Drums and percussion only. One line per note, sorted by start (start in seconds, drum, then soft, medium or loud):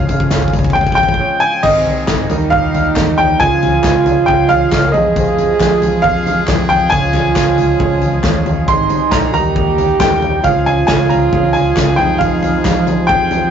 0.09 kick loud
0.09 floor tom medium
0.09 tambourine medium
0.20 kick loud
0.31 kick loud
0.31 snare loud
0.31 clap medium
0.31 floor tom medium
0.31 tambourine loud
0.42 kick loud
0.42 tambourine soft
0.48 kick loud
0.53 kick loud
0.53 floor tom medium
0.53 tambourine medium
0.59 kick loud
0.64 kick loud
0.64 tambourine soft
0.70 kick loud
0.75 kick loud
0.75 floor tom medium
0.75 tambourine soft
0.81 kick loud
0.86 kick loud
0.86 tambourine soft
0.92 kick loud
0.98 kick loud
0.98 floor tom medium
0.98 tambourine soft
1.03 kick loud
1.09 kick loud
1.14 kick loud
1.63 kick loud
1.63 floor tom medium
1.63 crash loud
1.63 tambourine medium
1.86 floor tom medium
2.07 kick loud
2.07 snare loud
2.07 clap loud
2.07 floor tom loud
2.07 tambourine medium
2.30 floor tom medium
2.30 tambourine medium
2.52 kick loud
2.52 floor tom medium
2.74 floor tom medium
2.74 tambourine medium
2.96 kick loud
2.96 snare loud
2.96 clap loud
2.96 floor tom loud
2.96 tambourine medium
3.19 floor tom loud
3.19 tambourine soft
3.40 kick loud
3.40 floor tom medium
3.40 tambourine medium
3.62 floor tom medium
3.62 tambourine medium
3.84 kick loud
3.84 snare loud
3.84 clap loud
3.84 floor tom medium
3.84 tambourine medium
4.06 floor tom loud
4.06 tambourine medium
4.28 kick loud
4.28 floor tom medium
4.50 floor tom medium
4.50 tambourine medium
4.72 kick loud
4.72 snare loud
4.72 clap loud
4.72 floor tom loud
4.72 tambourine loud
4.94 floor tom medium
4.94 tambourine soft
5.16 kick loud
5.16 floor tom loud
5.16 tambourine medium
5.38 floor tom medium
5.38 tambourine medium
5.60 kick loud
5.60 snare loud
5.60 clap loud
5.60 floor tom loud
5.60 tambourine loud
5.82 floor tom medium
5.82 tambourine medium
6.04 kick loud
6.04 floor tom medium
6.26 floor tom medium
6.26 tambourine medium
6.47 kick loud
6.47 snare loud
6.47 clap loud
6.47 floor tom loud
6.47 tambourine loud
6.70 floor tom loud
6.70 tambourine soft
6.92 kick loud
6.92 floor tom medium
6.92 tambourine medium
7.14 clap medium
7.14 floor tom medium
7.14 tambourine medium
7.36 kick loud
7.36 snare loud
7.36 clap loud
7.36 floor tom medium
7.36 tambourine loud
7.58 floor tom medium
7.58 tambourine medium
7.80 kick loud
7.80 floor tom medium
8.02 floor tom medium
8.02 tambourine medium
8.23 kick loud
8.23 snare loud
8.23 clap loud
8.23 floor tom loud
8.23 tambourine loud
8.46 floor tom medium
8.46 tambourine soft
8.68 kick loud
8.68 floor tom medium
8.68 tambourine medium
8.89 floor tom medium
8.89 tambourine medium
9.12 kick loud
9.12 snare loud
9.12 clap loud
9.12 floor tom loud
9.12 tambourine medium
9.34 floor tom loud
9.34 tambourine medium
9.56 kick loud
9.56 floor tom medium
9.78 floor tom loud
9.78 tambourine medium
10.00 kick loud
10.00 snare loud
10.00 clap loud
10.00 floor tom loud
10.00 tambourine medium
10.22 floor tom medium
10.22 tambourine soft
10.44 kick loud
10.44 floor tom medium
10.44 tambourine medium
10.66 floor tom medium
10.66 tambourine medium
10.88 kick loud
10.88 snare loud
10.88 clap loud
10.88 floor tom loud
10.88 tambourine medium
11.10 floor tom medium
11.10 tambourine medium
11.33 kick loud
11.33 floor tom medium
11.55 floor tom medium
11.55 tambourine medium
11.76 kick loud
11.76 snare loud
11.76 clap medium
11.76 floor tom medium
11.76 tambourine loud
11.99 floor tom loud
11.99 tambourine soft
12.20 kick loud
12.20 floor tom medium
12.20 tambourine medium
12.43 floor tom medium
12.43 tambourine medium
12.65 kick loud
12.65 snare loud
12.65 clap loud
12.65 floor tom loud
12.65 tambourine loud
12.87 floor tom medium
12.87 tambourine medium
13.09 kick loud
13.09 floor tom loud
13.31 floor tom medium
13.31 tambourine medium